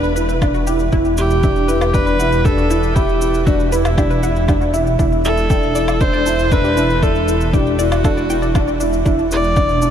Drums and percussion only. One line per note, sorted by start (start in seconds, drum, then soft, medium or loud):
0.04 shaker soft
0.16 shaker medium
0.29 shaker soft
0.42 kick loud
0.42 low woodblock medium
0.42 shaker soft
0.54 shaker soft
0.67 shaker medium
0.79 shaker soft
0.92 kick medium
0.92 shaker soft
1.05 shaker soft
1.17 shaker medium
1.30 shaker soft
1.43 kick loud
1.43 shaker soft
1.56 shaker soft
1.69 shaker medium
1.81 low woodblock medium
1.81 shaker soft
1.94 kick loud
1.94 shaker soft
2.07 shaker soft
2.20 shaker medium
2.32 shaker soft
2.45 kick loud
2.45 shaker soft
2.58 shaker soft
2.71 shaker medium
2.83 shaker soft
2.96 kick loud
2.96 shaker soft
3.09 shaker soft
3.22 shaker medium
3.34 shaker soft
3.47 kick loud
3.47 shaker soft
3.60 shaker soft
3.72 shaker medium
3.85 low woodblock medium
3.85 shaker soft
3.98 kick loud
3.98 low woodblock medium
3.98 shaker soft
4.11 shaker soft
4.23 shaker medium
4.36 shaker soft
4.48 kick loud
4.48 low woodblock medium
4.48 shaker soft
4.61 shaker soft
4.74 shaker medium
4.87 shaker soft
4.99 kick loud
4.99 shaker soft
5.12 shaker soft
5.25 shaker medium
5.37 shaker soft
5.50 kick loud
5.50 shaker soft
5.63 shaker soft
5.75 shaker medium
5.88 low woodblock medium
5.88 shaker soft
6.01 kick loud
6.01 shaker soft
6.14 shaker soft
6.26 shaker medium
6.39 shaker soft
6.52 kick loud
6.52 shaker soft
6.64 shaker soft
6.77 shaker medium
6.90 shaker soft
7.03 kick loud
7.03 shaker soft
7.15 shaker soft
7.28 shaker medium
7.41 shaker soft
7.53 kick loud
7.53 shaker soft
7.67 shaker soft
7.79 shaker medium
7.92 low woodblock medium
7.92 shaker soft
8.04 kick loud
8.04 low woodblock medium
8.04 shaker soft
8.17 shaker soft
8.30 shaker medium
8.43 shaker soft
8.55 kick loud
8.55 low woodblock medium
8.55 shaker soft
8.68 shaker soft
8.80 shaker medium
8.93 shaker soft
9.06 kick loud
9.06 shaker soft
9.19 shaker soft
9.31 shaker medium
9.44 shaker soft
9.56 kick loud
9.56 shaker soft
9.69 shaker soft
9.82 shaker medium